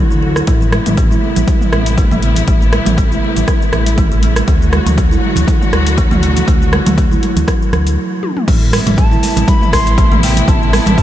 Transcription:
Already playing: string section D3 F#3 A3 F#4
0.11 analog synth bass D2, kalimba E3, cabasa
0.22 kalimba A4, muted conga
0.36 cross-stick, cabasa
0.47 analog synth bass A1, string section C3 A3 B3 E4, kalimba A3, kick, closed hi-hat, cabasa
0.61 muted conga, cabasa
0.72 cross-stick, closed hi-hat, high conga
0.86 analog synth bass A1, kalimba G3, closed hi-hat, mid tom, high conga, low conga, cabasa
0.97 kalimba A3, kick, closed hi-hat, cabasa
1.11 kalimba E4, high conga, cabasa
1.23 high conga
1.36 analog synth bass A1, kalimba G3, closed hi-hat, low conga, cabasa
1.48 kick, closed hi-hat, muted conga, high conga, cabasa
1.61 mid tom, cabasa
1.73 analog synth bass A1, cross-stick, closed hi-hat, high conga
1.86 closed hi-hat, muted conga, cabasa
1.98 kalimba A3, kick, closed hi-hat, cabasa
2.11 analog synth bass A1, kalimba A3, mid tom, low conga, cabasa
2.22 kalimba A3, closed hi-hat, muted conga
2.36 closed hi-hat, low conga, cabasa
2.48 analog synth bass A1, kalimba A3, kick, closed hi-hat, cabasa
2.61 muted conga, cabasa
2.72 cross-stick, closed hi-hat, high conga
2.85 analog synth bass A1, kalimba G3, closed hi-hat, mid tom, high conga, low conga, cabasa
2.97 kalimba A3, kick, closed hi-hat, muted conga, cabasa
3.11 kalimba E4, high conga, cabasa
3.24 high conga
3.36 analog synth bass A1, kalimba G3, closed hi-hat, low conga, cabasa
3.48 kick, cross-stick, closed hi-hat, muted conga, cabasa
3.62 cabasa
3.73 analog synth bass A1, cross-stick, closed hi-hat, low conga
3.86 closed hi-hat, muted conga, cabasa
3.98 kalimba A3, kick, closed hi-hat, mid tom, cabasa
4.12 analog synth bass A1, kalimba A3, cabasa
4.23 kalimba A3, closed hi-hat, muted conga
4.36 cross-stick, closed hi-hat, cabasa
4.48 analog synth bass D2, string section D3 F#3 F#4, kalimba A3, kick, closed hi-hat, cabasa
4.62 muted conga, cabasa
4.73 cross-stick, closed hi-hat, high conga
4.86 analog synth bass D2, kalimba F#3, closed hi-hat, mid tom, high conga, low conga, cabasa
4.98 kalimba A3, kick, closed hi-hat, muted conga, cabasa
5.11 kalimba E4, high conga, cabasa
5.22 high conga
5.36 analog synth bass D2, kalimba F#3, closed hi-hat, low conga, cabasa
5.48 kick, closed hi-hat, muted conga, high conga, cabasa
5.62 mid tom, cabasa
5.72 analog synth bass D2, cross-stick, closed hi-hat, high conga
5.87 closed hi-hat, muted conga, cabasa
5.97 kalimba A3, kick, closed hi-hat, cabasa
6.11 analog synth bass D2, kalimba A3, mid tom, low conga, cabasa
6.23 kalimba A3, closed hi-hat, muted conga
6.37 closed hi-hat, low conga, cabasa
6.48 analog synth bass D2, kalimba A3, kick, closed hi-hat, cabasa
6.62 muted conga, cabasa
6.73 cross-stick, closed hi-hat, high conga
6.86 analog synth bass D2, kalimba F#3, closed hi-hat, mid tom, high conga, low conga, cabasa
6.98 kalimba A3, kick, closed hi-hat, muted conga, cabasa
7.11 kalimba E4, high conga, cabasa
7.23 closed hi-hat, high conga
7.36 analog synth bass D2, kalimba F#3, closed hi-hat, low conga, cabasa
7.48 kick, cross-stick, closed hi-hat, muted conga, cabasa
7.62 cabasa
7.73 analog synth bass D2, cross-stick, closed hi-hat, low conga
7.87 closed hi-hat, muted conga, cabasa
8.23 high tom
8.37 mid tom
8.48 analog synth bass A1, string section C3 A3 B3 E4, kalimba A3, kick, closed hi-hat, crash, muted conga, cabasa
8.63 cabasa
8.72 cross-stick, open hi-hat, high conga, cabasa
8.86 analog synth bass A1, kalimba G3, closed hi-hat, mid tom, muted conga, high conga, low conga, cabasa
8.98 kalimba A3, flute A5, kick, closed hi-hat, cabasa
9.11 kalimba E4, muted conga, high conga, cabasa
9.23 open hi-hat, high conga, cabasa
9.36 analog synth bass A1, kalimba G3, closed hi-hat, muted conga, low conga, cabasa
9.48 flute B5, kick, closed hi-hat, high conga, cabasa
9.61 mid tom, muted conga, cabasa
9.73 analog synth bass A1, flute C6, kick, cross-stick, open hi-hat, high conga, cabasa
9.87 closed hi-hat, cabasa
9.98 kalimba A3, kick, closed hi-hat, muted conga, cabasa
10.12 analog synth bass A1, kalimba A3, mid tom, low conga, cabasa
10.23 kalimba A3, flute G5, open hi-hat, muted conga, cabasa
10.36 closed hi-hat, low conga, cabasa
10.48 analog synth bass A1, kalimba A3, flute A5, kick, closed hi-hat, muted conga, cabasa
10.63 cabasa
10.73 cross-stick, open hi-hat, high conga, cabasa
10.86 analog synth bass A1, kalimba G3, closed hi-hat, mid tom, muted conga, high conga, low conga, cabasa
10.98 kalimba A3, kick, closed hi-hat, cabasa

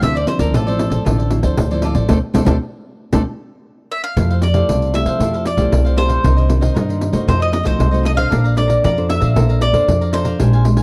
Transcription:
0.01 upright bass D2, nylon-string guitar D3 F3 C4 E4, cavaquinho F4 A4 C5 D5, mandolin E5, pandeiro
0.15 cavaquinho A4 C5 D5, mandolin D5, pandeiro
0.26 nylon-string guitar F3 C4 E4, mandolin C5, muted cavaquinho stroke, pandeiro
0.39 upright bass D2, cavaquinho A4 C5 D5, mandolin A#4, pandeiro
0.54 upright bass A1, nylon-string guitar A2, cavaquinho F4 A4 C5 D5, mandolin A4, pandeiro
0.67 nylon-string guitar F3 C4 E4, cavaquinho A4 C5 D5, pandeiro
0.79 pandeiro
0.90 upright bass A1, cavaquinho A4 C5 D5, pandeiro
1.05 upright bass A1, nylon-string guitar D3 F3 C4 E4, cavaquinho F4 A4 C5 D5, pandeiro
1.18 cavaquinho A4 C5 D5, pandeiro
1.31 nylon-string guitar F3 C4 E4, muted cavaquinho stroke, pandeiro
1.43 upright bass D2, cavaquinho A4 C5 D5, pandeiro
1.57 upright bass D2, nylon-string guitar A2, pandeiro
1.71 nylon-string guitar F3 C4 E4, cavaquinho A4 C5 D5, pandeiro
1.82 cavaquinho F4 A4 C5 D5, pandeiro
1.95 upright bass A1, cavaquinho A4 C5 D5, pandeiro
2.09 upright bass D2, nylon-string guitar A3 C4 D4, cavaquinho A4 C5 D5, pandeiro
2.34 upright bass D2, nylon-string guitar A3 C4 D4, cavaquinho A4 C5 D5, pandeiro
2.45 upright bass D2, nylon-string guitar A3 C4 D4, cavaquinho A4 C5 D5, pandeiro
3.12 upright bass D2, nylon-string guitar A3 C4 D4, cavaquinho A4 C5 D5, pandeiro
3.92 mandolin E5
4.04 mandolin F5
4.17 upright bass F2, nylon-string guitar F3 A3 E4 G4, cavaquinho E4 A4 C5 F5, pandeiro
4.30 cavaquinho A4 C5 F5, pandeiro
4.42 mandolin D5, muted cavaquinho stroke, pandeiro
4.53 nylon-string guitar A3 E4 G4, cavaquinho A4 C5 F5, pandeiro
4.69 upright bass C2, nylon-string guitar C3, cavaquinho A4 C5 F5, pandeiro
4.82 pandeiro
4.94 nylon-string guitar A3 E4 G4, mandolin E5, pandeiro
5.06 upright bass F3, cavaquinho A4 C5 F5, pandeiro
5.20 upright bass F2, nylon-string guitar F3 A3 E4 G4, cavaquinho E4 A4 C5 F5, pandeiro
5.33 cavaquinho A4 C5 F5, pandeiro
5.45 mandolin D5, muted cavaquinho stroke, pandeiro
5.57 upright bass C2, nylon-string guitar A3 E4 G4, cavaquinho A4 C5 F5, pandeiro
5.72 upright bass C2, nylon-string guitar C3, pandeiro
5.85 cavaquinho A4 C5 F5, pandeiro
5.96 nylon-string guitar A3 E4 G4, cavaquinho E4 A4 C5 F5, mandolin C5, pandeiro
6.08 cavaquinho A4 C5 F5, pandeiro
6.23 upright bass C2, nylon-string guitar C3 D#3 A#3 D4, cavaquinho D#4 A#4 C5 D#5, pandeiro
6.36 cavaquinho A#4 C5 D#5, pandeiro
6.49 nylon-string guitar D#3 A#3 D4, muted cavaquinho stroke, pandeiro
6.61 cavaquinho A#4 C5 D#5, pandeiro
6.74 upright bass G2, nylon-string guitar G2, cavaquinho D#4 A#4 C5 D#5, pandeiro
6.89 nylon-string guitar D#3 A#3 D4, pandeiro
7.01 pandeiro
7.13 upright bass C3, nylon-string guitar A3 D#4 F#4, cavaquinho A#4 C5 D#5, pandeiro
7.27 upright bass F2, nylon-string guitar F3, cavaquinho F4 A4 C5 D#5, mandolin C5, pandeiro
7.40 cavaquinho A4 C5 D#5, mandolin D#5, pandeiro
7.51 mandolin D#5, muted cavaquinho stroke, pandeiro
7.63 upright bass C2, nylon-string guitar A3 D#4 F#4, cavaquinho A4 C5 D#5, mandolin C5, pandeiro
7.79 upright bass C2, nylon-string guitar C3, pandeiro
7.91 nylon-string guitar A3 D#4 F#4, cavaquinho A4 C5 D#5, pandeiro
8.03 cavaquinho F4 A4 C5 D#5, mandolin D#5, pandeiro
8.15 nylon-string guitar D4 A4 C5, cavaquinho A4 C5 D#5, mandolin F5, pandeiro
8.30 upright bass A#1, nylon-string guitar A#3, cavaquinho A4 D5 F5 A#5, pandeiro
8.44 cavaquinho D5 F5 A#5, pandeiro
8.55 nylon-string guitar D4 A4, mandolin D5, muted cavaquinho stroke, pandeiro
8.59 nylon-string guitar C5
8.68 cavaquinho D5 F5 A#5, pandeiro
8.84 upright bass F2, nylon-string guitar F3, cavaquinho D5 F5 A#5, mandolin D5, pandeiro
8.97 nylon-string guitar D4 A4 C5, pandeiro
9.09 mandolin E5, pandeiro
9.20 upright bass A#2, cavaquinho D5 F5 A#5, pandeiro
9.35 upright bass A#1, nylon-string guitar A#3 D4 A4 C5, cavaquinho A4 D5 F5 A#5, pandeiro
9.49 cavaquinho D5 F5 A#5, pandeiro
9.61 mandolin D5, muted cavaquinho stroke, pandeiro
9.73 upright bass F2, nylon-string guitar D4 A4 C5, cavaquinho D5 F5 A#5, pandeiro
9.88 upright bass F2, nylon-string guitar F3, pandeiro
10.01 cavaquinho D5 F5 A#5, pandeiro
10.13 nylon-string guitar D4 A4 C5, cavaquinho A4 D5 F5 A#5, mandolin C5, pandeiro
10.24 cavaquinho D5 F5 A#5, pandeiro
10.40 upright bass A#1, nylon-string guitar A#2 G#3 D4 G4, cavaquinho D4 A#4 F5 G#5, pandeiro
10.53 cavaquinho A#4 F5 G#5, pandeiro
10.64 nylon-string guitar G#3 D4 G4, muted cavaquinho stroke, pandeiro
10.77 cavaquinho A#4 F5 G#5, pandeiro

